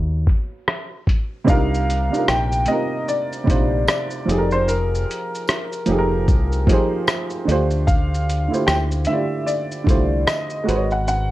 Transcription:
Already playing: fingered electric bass D#2
0.27 kick, closed hi-hat
0.68 cross-stick
1.07 kick, closed hi-hat
1.44 fingered electric bass C2, upright piano C3 G3 D4, kick, shaker
1.48 upright piano D#4 F4 A#4 F5
1.75 shaker
1.90 closed hi-hat, shaker
2.10 upright piano C3 G3 D4 D#4
2.14 upright piano F4 A#4, shaker
2.28 fingered electric bass A#1, upright piano G5, cross-stick, tambourine, shaker
2.52 shaker
2.66 upright piano C3 G3 C4 D#5, closed hi-hat, shaker
2.70 upright piano D#4 F4 A#4
3.08 upright piano D5, shaker
3.33 shaker
3.44 fingered electric bass A#1, upright piano C3 G3 D4 D#4, kick
3.49 upright piano F4 C5, closed hi-hat, shaker
3.88 upright piano D5, cross-stick, tambourine, shaker
4.11 shaker
4.25 fingered electric bass F1, upright piano F3 D#4 G4, closed hi-hat, shaker
4.30 upright piano G#4 A4
4.38 upright piano A#4
4.51 upright piano C5, shaker
4.68 upright piano A#4, shaker
4.95 shaker
5.11 closed hi-hat, shaker
5.35 shaker
5.48 cross-stick, tambourine, shaker
5.73 shaker
5.86 fingered electric bass F1, upright piano F3 D#4 G4, closed hi-hat, shaker
5.91 upright piano G#4 A4
5.98 upright piano A#4
6.28 fingered electric bass C2, kick, shaker
6.52 shaker
6.67 upright piano F3 D#4 G4, kick, closed hi-hat, shaker
6.71 upright piano G#4 C5
7.07 cross-stick, tambourine, shaker
7.30 shaker
7.45 fingered electric bass D2, upright piano D3 A3 D4 F4, closed hi-hat, shaker
7.50 upright piano G4 C5
7.71 shaker
7.87 upright piano F5, kick, shaker
8.14 shaker
8.30 closed hi-hat, shaker
8.48 upright piano D3 A3 E4 F4
8.53 upright piano G4 C5, shaker
8.67 fingered electric bass D2, upright piano G5, cross-stick, tambourine, shaker
8.92 shaker
9.05 upright piano D3 A3 E5, closed hi-hat, shaker
9.10 upright piano E4 F4 G4 D5
9.46 upright piano D5, shaker
9.72 shaker
9.84 fingered electric bass C2, upright piano D3 A3 E4 F4, kick
9.89 upright piano G4 C5, closed hi-hat, shaker
10.27 upright piano D#5, cross-stick, tambourine, shaker
10.50 shaker
10.64 upright piano G#3 F#4 A#4
10.68 fingered electric bass G#1, upright piano B4 C5, closed hi-hat, shaker
10.76 upright piano C#5
10.91 upright piano F#5, shaker
11.08 upright piano F#5, shaker

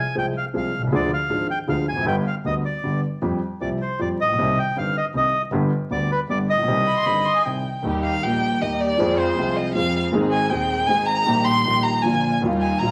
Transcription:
0.00 bandoneon G#5
0.15 grand piano C2 C3 F3 G#3 C4 G#4, double bass C2, bandoneon G5
0.37 bandoneon F5
0.54 grand piano C2 C3 F3 G#3 C4 G#4, double bass C2, bandoneon F5
0.73 double bass C2
0.78 grand piano B1
0.82 grand piano C2
0.87 grand piano C#2
0.92 grand piano D2 D3 F3 G#3 D4 G#4, double bass D2, bandoneon D5
1.14 bandoneon F5
1.30 grand piano G#1 G#2 F3 G#3 D4 G#4, double bass G#1
1.51 bandoneon G5
1.68 grand piano D2 D3 F3 G#3 D4 G#4, double bass D2, bandoneon F5
1.87 double bass F1, bandoneon G#5
1.92 grand piano E2
1.96 grand piano F2
2.01 grand piano F#2
2.05 grand piano G1 G2 D3 G3 B3 G4, double bass G1, bandoneon G5
2.27 bandoneon F5
2.44 grand piano D2 D3 G3 B3 G4, double bass D2, bandoneon D#5
2.65 bandoneon D5
2.83 double bass G1, grand piano G1 G2 D3 G3 B3 G4
3.22 double bass F2, grand piano F2 F3 G3 C4 G4
3.61 double bass C2, grand piano C2 C3 F3 G3 C4 G4, bandoneon D5
3.82 bandoneon C5
3.99 double bass F2, grand piano F2 F3 G3 C4 G4, bandoneon D5
4.19 double bass A#1, bandoneon D#5
4.24 grand piano A1
4.28 grand piano A#1
4.33 grand piano B1
4.38 double bass C2, grand piano C2 C3 D#3 G3 C4 G4
4.59 bandoneon G5
4.76 grand piano G1 G2 D#3 G3 C4 G4, double bass G1, bandoneon F5
4.97 bandoneon D#5
5.14 double bass C2, grand piano C2 C3 D#3 G3 C4 G4, bandoneon D#5
5.52 double bass G1, grand piano G1 G2 D3 G3 B3 G4
5.90 double bass D2, grand piano D2 D3 G3 B3 G4, bandoneon D5
6.12 bandoneon B4
6.28 double bass G1, grand piano G1 G2 D3 G3 B3 G4, bandoneon D5
6.50 grand piano A1, bandoneon D#5
6.58 grand piano A#1
6.63 grand piano B1
6.67 grand piano C2 C3 D#3 G3 C4 G4
6.86 violin B5
6.97 violin C6
7.06 grand piano G1 G2 D#3 G3 C4 G4, violin B5
7.25 violin C6
7.36 violin G#5
7.45 grand piano C2 C3 D#3 G3 C4 G4, violin G5
7.82 double bass D#2, grand piano D#2 D#3 G3 A#3 G4, string section A#3 D#4 G4
8.03 violin F5
8.22 double bass A#1, grand piano A#1 A#2 D#3 G3 A#3 G4, string section A#3 D#4 G4, violin G5
8.60 double bass D#2, grand piano D#2 D#3 G3 A#3, string section A#3 D#4 G4, violin D#5
8.64 grand piano G4
8.80 violin D5
8.98 double bass F2, grand piano F2 F3 G#3 C4, string section C4 F4 G#4
9.02 grand piano G#4
9.19 violin C5
9.36 double bass C2, grand piano C2 C3 F3 G#3 C4, string section C4 F4 G#4
9.40 grand piano G#4
9.56 violin D#5
9.74 double bass F2, grand piano F2 F3 G#3 C4 G#4, string section C4 F4 G#4, violin F5
10.11 double bass G#1, grand piano G#1 G#2 D#3 G#3 C4, string section C4 D#4 G#4
10.15 grand piano G#4
10.32 violin G#5
10.49 grand piano D#1 D#2 D#3 G#3 C4 G#4, double bass D#2, string section C4 D#4 G#4, violin G5
10.86 grand piano G#1 G#2 D#3 G#3 C4 G#4, double bass G#1, string section C4 D#4 G#4, violin G#5
11.06 violin A#5
11.25 grand piano A#1 A#2 D#3 G3 A#3 G4, double bass A#1, string section A#3 D#4 G4
11.44 violin C6
11.64 grand piano A#1 A#2 D#3 G3 A#3 G4, double bass A#1, string section A#3 D#4 G4
11.82 violin A#5
12.02 grand piano A#1 A#2 D3 F3 A#3, double bass A#1, string section A#3 D4 F4, violin G#5
12.06 grand piano F4
12.41 double bass D#2, grand piano D#2 D#3 G3 A#3 F4, string section G3 D#4 F4
12.61 violin G#5
12.79 grand piano A#1 A#2 D#3 G3 A#3, double bass A#1, string section G3 D#4 F4, violin A#5
12.83 grand piano F4

